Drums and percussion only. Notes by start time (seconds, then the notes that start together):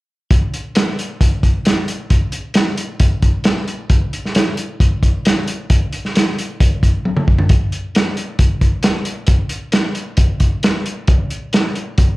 0.31 kick, closed hi-hat
0.54 closed hi-hat
0.75 snare, closed hi-hat
0.99 closed hi-hat
1.21 kick, closed hi-hat
1.43 kick, closed hi-hat
1.65 snare, closed hi-hat
1.88 closed hi-hat
2.10 kick, closed hi-hat
2.32 closed hi-hat
2.54 snare, closed hi-hat
2.77 closed hi-hat
3.00 kick, closed hi-hat
3.22 kick, closed hi-hat
3.44 snare, closed hi-hat
3.68 closed hi-hat
3.90 kick, closed hi-hat
4.13 closed hi-hat
4.25 snare
4.35 snare, closed hi-hat
4.57 closed hi-hat
4.80 kick, closed hi-hat
5.03 kick, closed hi-hat
5.25 snare, closed hi-hat
5.48 closed hi-hat
5.70 kick, closed hi-hat
5.93 closed hi-hat
6.05 snare
6.15 snare, closed hi-hat
6.38 closed hi-hat
6.60 kick, closed hi-hat
6.83 kick, closed hi-hat
7.05 high tom
7.17 mid tom
7.28 kick
7.38 floor tom
7.49 kick, closed hi-hat
7.72 closed hi-hat
7.95 snare, closed hi-hat
8.17 closed hi-hat
8.39 kick, closed hi-hat
8.61 kick, closed hi-hat
8.83 snare, closed hi-hat
9.05 closed hi-hat
9.27 kick, closed hi-hat
9.49 closed hi-hat
9.72 snare, closed hi-hat
9.95 closed hi-hat
10.17 kick, closed hi-hat
10.40 kick, closed hi-hat
10.63 snare, closed hi-hat
10.86 closed hi-hat
11.08 kick, closed hi-hat
11.30 closed hi-hat
11.53 snare, closed hi-hat
11.75 closed hi-hat
11.98 kick, closed hi-hat